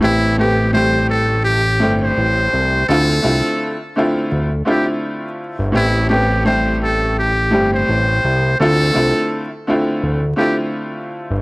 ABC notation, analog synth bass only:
X:1
M:4/4
L:1/16
Q:"Swing 16ths" 1/4=84
K:Am
V:1 name="Analog synth bass" clef=bass
A,,,8- A,,,2 G,,,2 A,,,2 C,,2 | D,,2 C,, z4 z D,,2 z4 z G,,, | A,,,8- A,,,2 G,,,2 A,,,2 C,,2 | D,,2 C,, z4 z D,,2 z4 z G,,, |]